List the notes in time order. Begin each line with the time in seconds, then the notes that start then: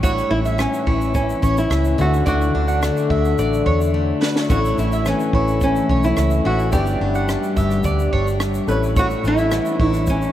Already playing: A1
0.03 A2 E4 F#4 C#5, kick, shaker
0.18 shaker
0.31 A1 C#4 E4
0.45 E5, shaker
0.58 E3 C#4, cross-stick, shaker
0.73 shaker
0.87 A1 E4 C#5, kick
1.01 shaker
1.14 A2 C#4, kick, shaker
1.30 shaker
1.42 A1 C#4 C#5, kick, shaker
1.57 E4, shaker
1.70 C#2 E3 E5, cross-stick, shaker
1.85 shaker
1.98 D2 D3 F#4 E5, shaker
2.14 shaker
2.26 D2 D3 F#4 D5, kick, shaker
2.41 shaker
2.55 D2 D4
2.68 F#5, shaker
2.82 A3, cross-stick, shaker
2.97 shaker
3.10 D2 F#4 E5, kick
3.25 shaker
3.38 A1 D3 D5, shaker
3.53 shaker
3.66 E2 D4 C#5, kick
3.81 shaker
3.94 A3
4.21 F#4 B4, snare
4.36 snare
4.48 A1 A2 A3 C#4 E4 F#4 C#5, kick, shaker
4.65 shaker
4.78 A1 C#4 E4, shaker
4.92 E5, shaker
5.06 E3 C#4, cross-stick, shaker
5.20 shaker
5.33 A1 E4 C#5, kick
5.48 shaker
5.61 A2 C#4, kick, shaker
5.76 shaker
5.89 B1 C#4 C#5, kick
6.03 E4, shaker
6.17 C#2 E3 E5, cross-stick, shaker
6.30 shaker
6.45 A1 E4 F#4 E5
6.59 shaker
6.72 G1 G2 B3 D4 G4 D5, kick, shaker
6.86 shaker
7.00 G1 D4
7.15 F#5, shaker
7.29 G3, cross-stick, shaker
7.43 shaker
7.56 G1 G4 E5, kick, shaker
7.71 cross-stick, shaker
7.83 D2 G2 D5, kick, shaker
7.99 shaker
8.12 G1 D4 C#5, kick
8.27 shaker
8.40 G3, cross-stick, shaker
8.54 shaker
8.67 A1 A2 A3 C#4 E4 B4 C#5, shaker
8.83 shaker
8.96 A2 E4 F#4 C#5, kick, shaker
9.10 shaker
9.24 A1 C#4 E4, shaker
9.38 E5, shaker
9.51 E3, cross-stick, shaker
9.66 shaker
9.79 A1 E4 C#5, kick
9.88 D4
9.93 cross-stick, shaker
10.07 A2 C#4, kick, shaker
10.22 shaker